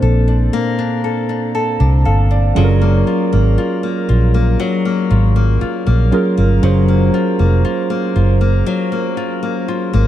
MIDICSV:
0, 0, Header, 1, 5, 480
1, 0, Start_track
1, 0, Tempo, 1016949
1, 1209, Time_signature, 4, 2, 24, 8
1, 4755, End_track
2, 0, Start_track
2, 0, Title_t, "Synth keys"
2, 0, Program_c, 0, 88
2, 0, Control_c, 0, 64, 127
2, 0, Note_on_c, 0, 46, 77
2, 0, Note_on_c, 0, 58, 71
2, 0, Note_on_c, 0, 60, 75
2, 0, Note_on_c, 0, 62, 72
2, 0, Note_on_c, 0, 69, 83
2, 0, Note_on_c, 0, 72, 90
2, 732, Note_on_c, 0, 81, 65
2, 959, Note_off_c, 0, 81, 0
2, 970, Note_on_c, 0, 77, 64
2, 1084, Note_off_c, 0, 77, 0
2, 1092, Note_on_c, 0, 74, 61
2, 1203, Note_on_c, 0, 54, 77
2, 1207, Note_on_c, 0, 61, 70
2, 1210, Note_on_c, 0, 65, 71
2, 1214, Note_on_c, 0, 68, 70
2, 1215, Note_off_c, 0, 46, 0
2, 1215, Control_c, 0, 64, 0
2, 1216, Note_off_c, 0, 62, 0
2, 1216, Note_off_c, 0, 69, 0
2, 1216, Note_on_c, 0, 69, 66
2, 1217, Note_off_c, 0, 58, 0
2, 1218, Note_off_c, 0, 72, 0
2, 1219, Note_off_c, 0, 60, 0
2, 1244, Note_off_c, 0, 69, 0
2, 1247, Note_on_c, 0, 70, 85
2, 1288, Control_c, 0, 64, 127
2, 1319, Note_off_c, 0, 74, 0
2, 1799, Note_off_c, 0, 54, 0
2, 1800, Note_off_c, 0, 61, 0
2, 1802, Note_off_c, 0, 65, 0
2, 1804, Note_off_c, 0, 68, 0
2, 1821, Note_off_c, 0, 70, 0
2, 2885, Note_on_c, 0, 54, 81
2, 2889, Note_on_c, 0, 61, 70
2, 2891, Note_on_c, 0, 65, 71
2, 2896, Note_on_c, 0, 68, 70
2, 2899, Note_on_c, 0, 70, 89
2, 3035, Note_off_c, 0, 54, 0
2, 3037, Note_off_c, 0, 61, 0
2, 3038, Note_off_c, 0, 65, 0
2, 3041, Note_off_c, 0, 68, 0
2, 3042, Note_off_c, 0, 70, 0
2, 3126, Note_on_c, 0, 54, 80
2, 3129, Note_on_c, 0, 61, 73
2, 3132, Note_on_c, 0, 65, 67
2, 3135, Note_on_c, 0, 68, 73
2, 3139, Note_on_c, 0, 72, 90
2, 3720, Note_off_c, 0, 54, 0
2, 3721, Note_off_c, 0, 61, 0
2, 3723, Note_off_c, 0, 65, 0
2, 3725, Note_off_c, 0, 68, 0
2, 3727, Note_off_c, 0, 72, 0
2, 4755, End_track
3, 0, Start_track
3, 0, Title_t, "Nylon-string guitar"
3, 0, Program_c, 1, 24
3, 0, Note_on_c, 1, 58, 82
3, 0, Note_on_c, 1, 62, 55
3, 11, Note_on_c, 1, 69, 60
3, 125, Note_off_c, 1, 62, 0
3, 131, Note_on_c, 1, 62, 57
3, 249, Note_off_c, 1, 58, 0
3, 251, Note_on_c, 1, 58, 84
3, 365, Note_off_c, 1, 62, 0
3, 371, Note_on_c, 1, 62, 61
3, 485, Note_off_c, 1, 69, 0
3, 491, Note_on_c, 1, 69, 59
3, 604, Note_off_c, 1, 62, 0
3, 610, Note_on_c, 1, 62, 54
3, 724, Note_off_c, 1, 69, 0
3, 730, Note_on_c, 1, 69, 60
3, 844, Note_off_c, 1, 62, 0
3, 850, Note_on_c, 1, 62, 52
3, 964, Note_off_c, 1, 69, 0
3, 969, Note_on_c, 1, 69, 57
3, 1083, Note_off_c, 1, 62, 0
3, 1089, Note_on_c, 1, 62, 59
3, 1209, Note_on_c, 1, 54, 82
3, 1257, Note_off_c, 1, 62, 0
3, 1257, Note_off_c, 1, 69, 0
3, 1327, Note_off_c, 1, 58, 0
3, 1329, Note_on_c, 1, 58, 59
3, 1449, Note_on_c, 1, 65, 61
3, 1568, Note_off_c, 1, 58, 0
3, 1570, Note_on_c, 1, 58, 54
3, 1687, Note_off_c, 1, 65, 0
3, 1689, Note_on_c, 1, 65, 60
3, 1807, Note_off_c, 1, 58, 0
3, 1809, Note_on_c, 1, 58, 58
3, 1927, Note_off_c, 1, 65, 0
3, 1929, Note_on_c, 1, 65, 60
3, 2048, Note_off_c, 1, 58, 0
3, 2050, Note_on_c, 1, 58, 57
3, 2164, Note_off_c, 1, 54, 0
3, 2169, Note_on_c, 1, 54, 86
3, 2289, Note_off_c, 1, 58, 0
3, 2291, Note_on_c, 1, 58, 61
3, 2408, Note_off_c, 1, 65, 0
3, 2410, Note_on_c, 1, 65, 61
3, 2527, Note_off_c, 1, 58, 0
3, 2529, Note_on_c, 1, 58, 56
3, 2647, Note_off_c, 1, 65, 0
3, 2649, Note_on_c, 1, 65, 59
3, 2766, Note_off_c, 1, 58, 0
3, 2768, Note_on_c, 1, 58, 54
3, 2888, Note_off_c, 1, 65, 0
3, 2890, Note_on_c, 1, 65, 59
3, 3007, Note_off_c, 1, 58, 0
3, 3009, Note_on_c, 1, 58, 59
3, 3123, Note_off_c, 1, 54, 0
3, 3129, Note_on_c, 1, 54, 81
3, 3247, Note_off_c, 1, 58, 0
3, 3249, Note_on_c, 1, 58, 58
3, 3367, Note_off_c, 1, 65, 0
3, 3369, Note_on_c, 1, 65, 61
3, 3487, Note_off_c, 1, 58, 0
3, 3489, Note_on_c, 1, 58, 56
3, 3607, Note_off_c, 1, 65, 0
3, 3609, Note_on_c, 1, 65, 60
3, 3727, Note_off_c, 1, 58, 0
3, 3729, Note_on_c, 1, 58, 56
3, 3848, Note_off_c, 1, 65, 0
3, 3850, Note_on_c, 1, 65, 63
3, 3967, Note_off_c, 1, 58, 0
3, 3969, Note_on_c, 1, 58, 58
3, 4084, Note_off_c, 1, 54, 0
3, 4090, Note_on_c, 1, 54, 79
3, 4208, Note_off_c, 1, 58, 0
3, 4210, Note_on_c, 1, 58, 62
3, 4327, Note_off_c, 1, 65, 0
3, 4329, Note_on_c, 1, 65, 60
3, 4448, Note_off_c, 1, 58, 0
3, 4449, Note_on_c, 1, 58, 54
3, 4569, Note_off_c, 1, 65, 0
3, 4571, Note_on_c, 1, 65, 63
3, 4687, Note_off_c, 1, 58, 0
3, 4689, Note_on_c, 1, 58, 58
3, 4755, Note_off_c, 1, 54, 0
3, 4755, Note_off_c, 1, 58, 0
3, 4755, Note_off_c, 1, 65, 0
3, 4755, End_track
4, 0, Start_track
4, 0, Title_t, "Fingered electric bass"
4, 0, Program_c, 2, 33
4, 11, Note_on_c, 2, 34, 92
4, 226, Note_off_c, 2, 34, 0
4, 852, Note_on_c, 2, 36, 92
4, 958, Note_off_c, 2, 36, 0
4, 973, Note_on_c, 2, 31, 83
4, 1187, Note_off_c, 2, 31, 0
4, 1213, Note_on_c, 2, 30, 100
4, 1427, Note_off_c, 2, 30, 0
4, 1574, Note_on_c, 2, 32, 78
4, 1680, Note_off_c, 2, 32, 0
4, 1934, Note_on_c, 2, 34, 90
4, 2148, Note_off_c, 2, 34, 0
4, 2413, Note_on_c, 2, 32, 88
4, 2627, Note_off_c, 2, 32, 0
4, 2773, Note_on_c, 2, 34, 85
4, 2879, Note_off_c, 2, 34, 0
4, 3012, Note_on_c, 2, 31, 86
4, 3118, Note_off_c, 2, 31, 0
4, 3131, Note_on_c, 2, 30, 106
4, 3346, Note_off_c, 2, 30, 0
4, 3492, Note_on_c, 2, 29, 86
4, 3599, Note_off_c, 2, 29, 0
4, 3852, Note_on_c, 2, 30, 91
4, 4066, Note_off_c, 2, 30, 0
4, 4692, Note_on_c, 2, 32, 83
4, 4755, Note_off_c, 2, 32, 0
4, 4755, End_track
5, 0, Start_track
5, 0, Title_t, "Muted fingered electric bass strokes"
5, 2653, Note_on_c, 9, 29, 49
5, 2700, Note_off_c, 9, 29, 0
5, 4755, End_track
0, 0, End_of_file